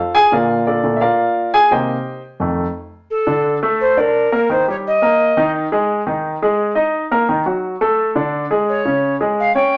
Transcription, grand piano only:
0.00 0.12 F4 medium
0.00 0.12 A4 medium
0.00 0.11 C5 medium
0.00 0.11 F5 medium
0.15 0.32 G#4 medium
0.15 0.32 G#5 loud
0.32 0.82 A#2 medium
0.32 0.82 D3 soft
0.32 1.68 A#3 medium
0.32 0.81 F4 medium
0.32 0.66 A#4 medium
0.32 0.65 D5 medium
0.32 0.81 F5 medium
0.67 1.00 D4 soft
0.67 1.00 A4 medium
0.67 1.00 A#4 soft
0.67 0.99 D5 medium
0.83 1.00 A#2 medium
0.83 1.00 D3 soft
0.83 1.00 A3 medium
0.96 0.99 E5 medium
1.01 1.50 F4 medium
1.01 1.50 A#4 medium
1.01 1.50 D5 medium
1.01 1.50 F5 medium
1.54 1.71 G#4 medium
1.54 1.71 G#5 loud
1.71 1.94 C3 soft
1.71 1.95 D#3 soft
1.71 1.95 A#3 medium
1.71 2.21 G4 medium
1.71 2.20 C5 medium
1.71 2.20 D#5 medium
1.71 2.20 G5 medium
2.40 2.64 F2 medium
2.40 2.64 D#3 medium
2.40 2.64 A3 medium
3.27 3.56 D3 medium
3.27 3.56 D4 medium
3.63 3.91 A3 medium
3.63 3.91 A4 medium
3.97 4.26 D4 medium
3.97 4.26 D5 medium
4.32 4.47 A#3 medium
4.32 4.47 A#4 medium
4.50 4.64 D#3 medium
4.50 4.64 D#4 medium
4.68 4.96 G3 medium
4.68 4.96 G4 medium
5.02 5.31 A#3 medium
5.02 5.31 A#4 medium
5.37 5.66 D#3 medium
5.37 5.66 D#4 medium
5.72 6.01 G#3 medium
5.72 6.01 G#4 medium
6.07 6.35 D#3 medium
6.07 6.35 D#4 medium
6.42 6.71 G#3 medium
6.42 6.71 G#4 medium
6.75 7.04 D#4 medium
6.75 7.04 D#5 medium
7.11 7.26 A#3 medium
7.11 7.26 A#4 medium
7.29 7.43 D#3 medium
7.29 7.43 D#4 medium
7.46 7.75 F#3 medium
7.46 7.75 F#4 medium
7.81 8.10 A3 medium
7.81 8.10 A4 medium
8.15 8.44 D3 medium
8.15 8.44 D4 medium
8.51 8.79 G#3 medium
8.51 8.79 G#4 medium
8.85 9.14 C#3 medium
8.85 9.14 C#4 medium
9.21 9.49 G#3 medium
9.21 9.49 G#4 medium
9.55 9.77 C#4 medium
9.55 9.77 C#5 medium

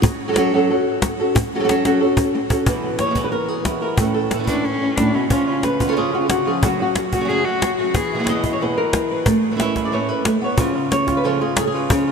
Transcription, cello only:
4.48 4.66 D4 medium
4.65 4.98 C#4 medium
4.96 5.16 D4 medium
5.14 5.30 C#4 medium
5.31 5.54 C#4 medium
7.13 7.30 F#4 medium
7.29 7.47 G#4 medium
7.45 7.77 F#4 medium
7.78 7.96 F#4 medium
7.95 8.20 G#4 medium

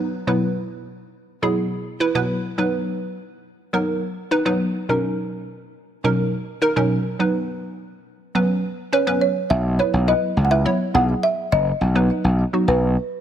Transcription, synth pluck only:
0.27 0.86 B2 medium
0.27 0.86 F#3 medium
0.27 0.86 B3 medium
0.27 0.86 E4 medium
0.27 0.86 B4 medium
1.42 1.72 B2 medium
1.42 1.72 F#3 medium
1.42 1.72 B3 medium
1.42 1.72 E4 medium
1.42 1.72 G#4 loud
2.00 2.08 E4 loud
2.00 2.08 B4 loud
2.15 2.37 B2 loud
2.15 2.37 F#3 medium
2.15 2.37 B3 medium
2.15 2.37 E4 medium
2.15 2.37 B4 loud
2.58 3.17 F#3 medium
2.58 3.17 B3 medium
2.58 3.17 D#4 medium
2.58 3.17 B4 medium
3.73 4.03 F#3 medium
3.73 4.03 B3 medium
3.73 4.03 D#4 medium
3.73 4.03 A#4 loud
4.31 4.38 D#4 loud
4.31 4.39 B4 loud
4.45 4.67 F#3 loud
4.45 4.68 B3 medium
4.45 4.68 D#4 medium
4.45 4.68 B4 loud
4.89 5.47 B2 medium
4.89 5.48 F#3 medium
4.89 5.48 C#4 medium
4.89 5.48 D#4 medium
4.89 5.48 A#4 medium
6.04 6.33 B2 medium
6.04 6.34 F#3 medium
6.04 6.34 C#4 medium
6.04 6.34 D#4 medium
6.04 6.34 A#4 loud
6.62 6.69 D#4 loud
6.62 6.69 A#4 loud
6.76 6.98 B2 loud
6.76 6.98 F#3 medium
6.76 6.98 C#4 medium
6.76 6.98 D#4 medium
6.76 6.98 A#4 loud
7.19 7.78 F#3 medium
7.19 7.78 B3 medium
7.19 7.78 D#4 medium
7.19 7.78 B4 medium
8.35 8.64 F#3 medium
8.35 8.64 B3 medium
8.35 8.64 C#4 medium
8.35 8.64 B4 loud
8.92 9.00 C#4 loud
8.92 9.00 B4 loud
9.07 9.29 F#3 medium
9.07 9.29 B3 medium
9.07 9.29 C#4 medium
9.07 9.29 B4 loud
9.79 9.94 F#3 medium
9.79 9.94 B3 medium
9.79 9.94 E4 medium
9.79 9.94 B4 medium
10.08 10.30 F#3 medium
10.08 10.30 B3 medium
10.08 10.30 E4 medium
10.08 10.30 B4 medium
10.51 10.58 E4 medium
10.51 10.59 B4 medium
10.65 10.80 F#3 medium
10.65 10.80 B3 medium
10.65 10.80 E4 medium
10.65 10.80 C#5 loud
10.94 11.46 F#3 medium
10.94 11.46 B3 medium
10.94 11.46 E4 medium
10.94 11.46 G#4 medium
11.95 12.25 F#3 medium
11.95 12.25 B3 medium
11.95 12.25 D#4 medium
11.95 12.25 B4 medium
12.53 12.90 F#3 medium
12.53 12.90 B3 medium
12.53 12.90 D#4 medium
12.53 12.90 F#4 medium

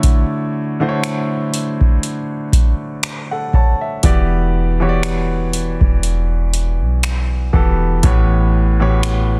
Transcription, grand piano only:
0.00 0.57 D3 medium
0.00 0.58 A3 medium
0.00 0.58 E4 medium
0.00 0.58 F#4 medium
0.00 0.58 C#5 medium
0.80 2.45 D3 medium
0.80 2.45 A3 medium
0.80 2.45 E4 medium
0.80 2.46 F#4 medium
0.80 0.87 C5 medium
0.89 2.49 C#5 medium
3.31 3.53 A4 medium
3.31 3.53 F#5 medium
3.54 3.80 C#5 medium
3.54 3.79 A5 medium
3.81 4.28 E5 medium
4.03 4.66 E3 medium
4.03 4.67 B3 medium
4.03 4.67 F#4 medium
4.03 4.67 G4 medium
4.03 4.67 D5 medium
4.80 6.45 E3 medium
4.80 6.45 B3 medium
4.80 6.45 F#4 medium
4.80 6.46 G4 medium
4.80 4.87 C#5 medium
4.89 6.49 D5 medium
7.53 7.95 E3 medium
7.53 7.96 B3 medium
7.53 7.96 F#4 medium
7.53 7.96 G4 medium
7.53 7.96 A4 medium
8.03 8.66 A2 medium
8.03 8.67 E3 medium
8.03 8.67 B3 medium
8.03 8.67 F#4 medium
8.03 8.67 G4 medium
8.03 8.68 C#5 medium
8.80 9.40 A2 medium
8.80 9.40 E3 medium
8.80 9.40 B3 medium
8.80 9.40 F#4 medium
8.80 9.40 G4 medium
8.80 9.40 C#5 medium

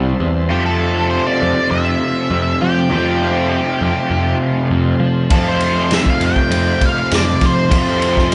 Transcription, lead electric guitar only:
0.51 0.65 G4 medium
0.66 1.07 A4 medium
1.10 1.27 C5 medium
1.27 1.71 D5 medium
1.71 2.63 E5 medium
2.61 4.37 G4 medium
5.31 5.48 A4 medium
5.48 5.94 C5 medium
5.94 6.10 E5 medium
6.10 6.24 F5 medium
6.26 6.85 G5 medium
6.85 7.14 F5 medium
7.15 7.44 D5 medium
7.46 8.35 C5 medium

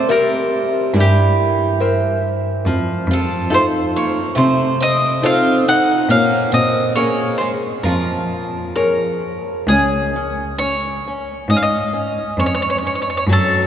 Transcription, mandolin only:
0.11 0.92 A#4 medium
1.00 2.21 G4 medium
3.13 3.54 A4 medium
3.54 3.65 C5 medium
3.96 4.37 C#5 medium
4.38 4.77 C5 medium
4.82 5.26 D#5 medium
5.26 5.68 F5 medium
5.69 6.10 F#5 medium
6.11 6.50 F5 medium
6.54 6.95 D#5 medium
6.96 7.36 C#5 medium
7.38 7.50 C5 medium
7.83 8.74 A#4 medium
8.76 9.64 A#4 medium
9.68 10.55 G#4 medium
10.58 11.49 C#5 medium
11.50 11.56 D#5 medium
11.57 11.63 F5 medium
11.62 12.39 D#5 medium
12.40 12.45 C#5 medium
12.46 12.53 C#5 medium
12.55 12.61 C#5 medium
12.62 12.68 C#5 medium
12.70 12.76 C#5 medium
12.78 12.84 C#5 soft
12.87 12.92 C#5 medium
12.95 13.00 C#5 soft
13.02 13.07 C#5 medium
13.10 13.15 C#5 medium
13.17 13.23 C#5 medium
13.33 13.67 A4 medium

